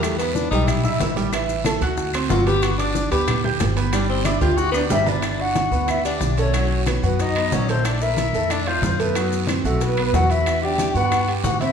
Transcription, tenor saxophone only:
\new Staff \with { instrumentName = "Tenor saxophone" } { \time 4/4 \key g \major \tempo 4 = 184 a8 b8 d'8 ees'8 e'4. r8 | r2. f'8 g'8 | fis'8 d'4 g'4 r4. | d'8 c'8 e'8 f'8 fis'8 b8 e'8 d'8~ |
d'8 fis'4. e'8 d'4 cis'8~ | cis'4 r8 b8 dis'4 cis'8 c'8 | d'8 e'4. d'8 c'4 b8~ | b4 r8 a8 b4 fis'8 e'8~ |
e'8 g'4 fis'4 r8 fis'8 e'8 | }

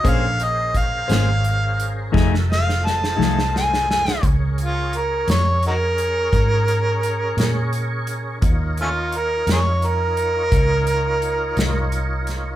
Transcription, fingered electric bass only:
\new Staff \with { instrumentName = "Fingered electric bass" } { \clef bass \time 12/8 \key bes \minor \tempo 4. = 57 bes,,4. aes,,4. f,,4. c,4. | des,4. f,4. aes,4. bes,4. | ees,4. f,4. des,4. c,4. | }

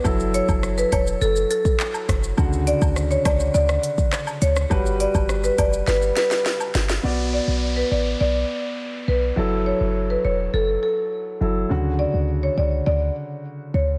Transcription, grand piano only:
\new Staff \with { instrumentName = "Grand piano" } { \time 4/4 \key b \minor \tempo 4 = 103 <fis e' a'>1 | <cis d fis'>1 | <g fis' b'>1 | <b fis' d''>1 |
<fis e' a'>2.~ <fis e' a'>8 <fis e' a'>8 | <cis d fis'>1 | }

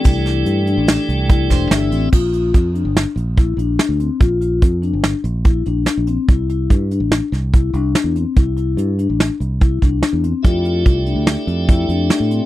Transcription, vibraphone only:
\new Staff \with { instrumentName = "Vibraphone" } { \time 5/4 \key bes \lydian \tempo 4 = 144 e'8 e'4 d'4 r8 e'8 d'8 d'8 c'8 | f'8 f'4 d'4 r8 e'8 d'8 d'8 c'8 | f'8 f'4 d'4 r8 e'8 d'8 d'8 c'8 | e'8 e'4 d'4 r8 e'8 d'8 d'8 c'8 |
e'8 e'4 d'4 r8 e'8 d'8 d'8 c'8 | f'8 f'4 d'4 r8 e'8 d'8 d'8 c'8 | }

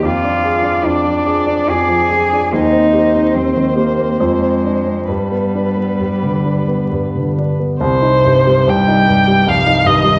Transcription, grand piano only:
\new Staff \with { instrumentName = "Grand piano" } { \time 3/4 \key c \minor \tempo 4 = 71 f,16 d'16 aes'16 d'16 f,16 f16 aes'16 d'16 f,16 f16 aes'16 d'16 | ees,16 c'16 g'16 c'16 ees,16 ees16 g'16 c'16 f,16 c'16 d'16 c'16 | g,16 b16 d'16 b16 g,16 d16 d'16 b16 g,16 d16 d'16 b16 | c,16 ees'16 g,16 g16 c,16 ees'16 g,16 g16 c,16 ees'16 g,16 g16 | }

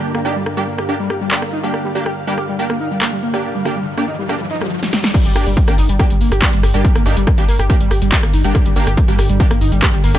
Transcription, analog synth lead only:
\new Staff \with { instrumentName = "Analog synth lead" } { \time 4/4 \key g \minor \tempo 4 = 141 r16 bes16 ees'16 g16 r16 g16 bes16 g'16 r16 g16 g'16 g16 r16 bes16 ees'16 g16 | r16 g16 bes16 g'16 r16 g16 g'16 g16 r16 bes16 ees'16 g16 r16 g16 bes16 g'16 | r16 g16 g'16 g16 r16 bes16 ees'16 g16 r16 g16 ees'16 g16 r4 | r16 g16 g'16 g16 r16 bes16 ees'16 g16 r16 g16 bes16 g'16 r16 g16 g'16 g16 |
r16 bes16 ees'16 g16 r16 g16 bes16 g'16 r16 g16 g'16 g16 r16 bes16 ees'16 g16 | r16 g16 bes16 g'16 r16 g16 g'16 g16 r16 bes16 ees'16 g16 r16 g16 bes16 g'16 | }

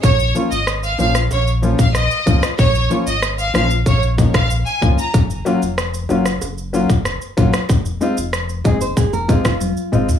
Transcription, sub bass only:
\new Staff \with { instrumentName = "Sub bass" } { \clef bass \time 4/4 \key bes \minor \tempo 4 = 94 bes,,8 r16 aes,,8. bes,,8 bes,,8. bes,,8 r16 des,16 r16 | bes,,8 r16 aes,,8. bes,,8 bes,,8. bes,,8 r16 des,16 r16 | ges,,8 r16 f,,8. ges,,8 ges,,8. ges,,8 r16 bes,,16 r16 | f,,8 r16 f,,8. ges,,8 f,,8. f,,8 r16 aes,,16 r16 | }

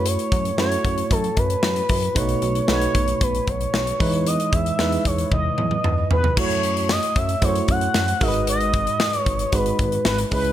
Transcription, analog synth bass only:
\new Staff \with { instrumentName = "Analog synth bass" } { \clef bass \time 4/4 \key fis \dorian \tempo 4 = 114 fis,8 fis,8 fis,8 fis,8 fis,8 fis,8 fis,8 fis,8 | b,,8 b,,8 b,,8 b,,8 b,,8 b,,8 b,,8 e,8~ | e,8 e,8 e,8 e,8 e,8 e,8 e,8 e,8 | fis,4~ fis,16 r16 fis,8 fis,8 fis,8 fis,8 gis,,8~ |
gis,,4~ gis,,16 r16 gis,,8 gis,,8 gis,,8 gis,,8 cis,8 | }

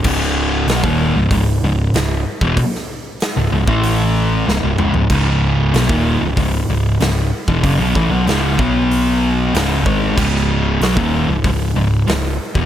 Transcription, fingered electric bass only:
\new Staff \with { instrumentName = "Fingered electric bass" } { \clef bass \time 4/4 \key cis \minor \tempo 4 = 95 cis,,4 b,,16 dis,,8 cis,,16 cis,,8 cis,,8 cis,,8 r16 e,,16 | r4 r16 cis,,16 cis,,16 a,,4~ a,,16 cis,,16 cis,,16 cis,,16 cis,,16 | cis,,4 b,,16 dis,,8 cis,,16 cis,,8 cis,,8 cis,,8 r16 e,,16 | fis,,16 b,,16 a,,16 b,,16 cis,,8 b,,4. cis,,8 gis,,8 |
cis,,4 b,,16 dis,,8 cis,,16 cis,,8 cis,,8 cis,,8 r16 e,,16 | }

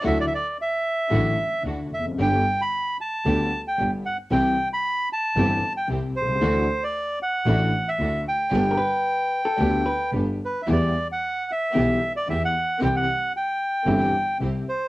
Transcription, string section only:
\new Staff \with { instrumentName = "String section" } { \time 4/4 \key g \major \tempo 4 = 113 <d' e' fis'>8 r4. <d' e' fis'>8 r8 <d' e' fis'>8 r8 | <b d' g'>8 r4. <b d' g'>8 r8 <b d' g'>8 r8 | <c' e' g'>8 r4. <c' e' g'>8 r8 <c' e' g'>8 r8 | <d' e' fis'>8 r4. <d' e' fis'>8 r8 <d' e' fis'>8 r8 |
<b d' g'>8 r4. <b d' g'>8 r8 <b d' g'>8 r8 | <b e' g'>8 r4. <b e' g'>8 r8 <b e' g'>8 r8 | <c' e' g'>8 r4. <c' e' g'>8 r8 <c' e' g'>8 r8 | }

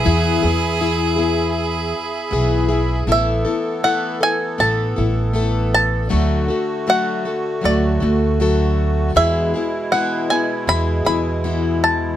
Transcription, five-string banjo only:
\new Staff \with { instrumentName = "Five-string banjo" } { \time 4/4 \key e \mixolydian \tempo 4 = 79 r1 | e''4 fis''8 gis''8 a''4 r8 a''8~ | a''4 fis''4 d''4. r8 | e''4 fis''8 gis''8 b''8 b''4 a''8 | }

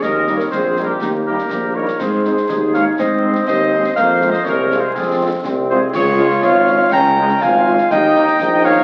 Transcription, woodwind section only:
\new Staff \with { instrumentName = "Woodwind section" } { \time 2/4 \key aes \major \tempo 4 = 122 \tuplet 3/2 { bes'4 bes'8 aes'4 g'8 } | ees'8 g'4 bes'8 | aes'4. des''8 | c''4 c''4 |
\tuplet 3/2 { c''4 c''8 bes'4 aes'8 } | f'8 r4 aes'8 | aes'4 des''4 | g''4 f''4 |
ees''4. des''8 | }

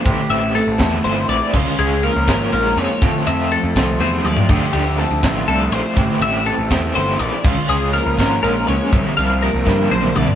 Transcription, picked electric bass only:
\new Staff \with { instrumentName = "Picked electric bass" } { \clef bass \time 6/8 \key a \phrygian \tempo 4. = 81 a,,16 r16 a,,8. a,,16 e,8 g,,8 bes,,16 r16 | des,16 r16 des,8. des,16 aes,,8 bes,,8 f,16 r16 | f,16 r16 f,8. f,16 c,8 e,8 ees,16 r16 | d,16 r16 d,8. d,16 a,,8 c,8 bes,,16 r16 |
a,,16 r16 a,,8. a,,16 e,8 g,,8 bes,,16 r16 | des,16 r16 des,8. des,16 aes,,8 bes,,8 des,16 r16 | c,16 r16 c,8. c,16 g,8 bes,,8 c,16 r16 | }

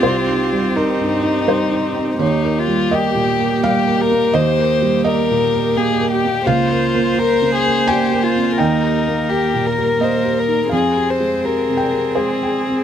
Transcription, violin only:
\new Staff \with { instrumentName = "Violin" } { \time 3/4 \key ees \mixolydian \tempo 4 = 84 f'4 ees'2 | ees'8 f'8 g'4 g'8 bes'8 | c''4 bes'4 aes'8 g'8 | f'4 bes'8 aes'8 g'8 f'8 |
ees'4 g'8 bes'8 c''8 bes'8 | aes'8 c''8 bes'4 aes'4 | }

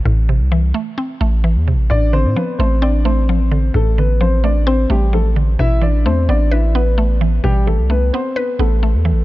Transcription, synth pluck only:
\new Staff \with { instrumentName = "Synth pluck" } { \clef bass \time 4/4 \key d \dorian \tempo 4 = 130 <a, c e a c'>8 c8 e8 a8 c'8 a8 e8 c8 | a,8 d8 f8 a8 c'8 a8 f8 d8 | a,8 d8 f8 a8 c'8 a8 f8 d8 | b,8 e8 a8 b8 b'8 b8 a8 e8 |
b,8 e8 a8 b8 b'8 b8 a8 e8 | }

